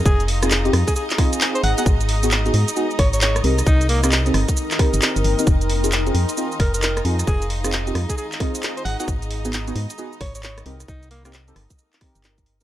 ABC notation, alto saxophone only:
X:1
M:4/4
L:1/16
Q:"Swing 16ths" 1/4=133
K:Fm
V:1 name="Alto saxophone"
A2 z4 z A A z4 c _g g | z8 z2 d d d2 z2 | E2 B, B, z12 | z8 z2 B B B2 z2 |
A2 z4 z A A z4 c _g g | z8 z2 d d d2 z2 | E2 B, B, z12 |]